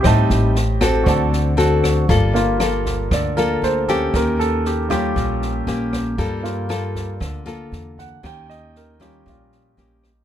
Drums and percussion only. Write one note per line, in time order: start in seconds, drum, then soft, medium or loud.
0.04 kick soft
0.04 cross-stick medium
0.04 snare soft
0.30 snare soft
0.55 snare soft
0.81 kick soft
0.81 cross-stick medium
0.81 snare soft
1.07 kick medium
1.07 snare soft
1.33 snare soft
1.58 snare soft
1.83 kick soft
1.83 cross-stick soft
1.83 snare soft
2.09 kick medium
2.09 snare soft
2.35 snare soft
2.60 cross-stick medium
2.60 snare soft
2.86 kick soft
2.86 snare soft
3.11 kick medium
3.11 cross-stick medium
3.11 snare soft
3.37 snare soft
3.63 snare soft
3.88 kick soft
3.88 snare soft
4.14 kick medium
4.14 cross-stick medium
4.14 snare soft
4.40 snare soft
4.65 snare soft
4.91 kick soft
4.91 cross-stick medium
4.91 snare soft
5.16 kick soft
5.16 snare soft
5.42 snare soft
5.67 snare soft
5.93 kick soft
5.93 cross-stick medium
5.93 snare soft
6.18 kick medium
6.18 snare soft
6.44 snare soft
6.70 cross-stick medium
6.70 snare soft
6.95 kick soft
6.95 snare soft
7.21 kick medium
7.21 cross-stick soft
7.21 snare soft
7.47 snare soft
7.72 snare soft
7.98 kick soft
7.98 snare soft
8.24 kick medium
8.24 cross-stick soft
8.24 snare soft
8.50 snare soft
8.75 snare soft
9.01 kick soft
9.01 cross-stick soft
9.01 snare soft
9.26 kick medium
9.26 snare soft
9.52 snare soft
9.77 snare soft
10.03 kick soft
10.03 cross-stick soft
10.03 snare soft